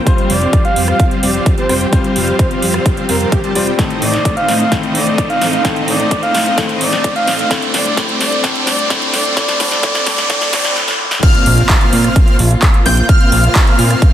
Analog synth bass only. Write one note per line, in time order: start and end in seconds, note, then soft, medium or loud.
0.30 0.46 F1 medium
0.76 0.93 F2 medium
1.23 1.39 F1 medium
1.69 1.86 F1 medium
2.16 2.32 F1 loud
2.62 2.79 F2 medium
3.09 3.25 F1 medium
3.55 3.72 F1 medium
4.02 4.18 A1 loud
4.49 4.65 A2 medium
4.95 5.11 A1 medium
5.42 5.58 A1 medium
5.88 6.04 A1 loud
6.35 6.51 A2 medium
6.81 6.97 A1 medium
7.28 7.44 A1 medium
7.74 7.90 G1 loud
8.21 8.37 G2 medium
8.67 8.83 G1 medium
9.14 9.30 G1 medium
9.60 9.76 G1 loud
10.07 10.23 G2 medium
10.53 10.69 G1 loud
11.46 11.63 A#1 loud
11.93 12.09 A#2 medium
12.39 12.56 A#1 medium
12.86 13.02 A#1 medium
13.32 13.49 A#1 loud
13.79 13.95 A#2 medium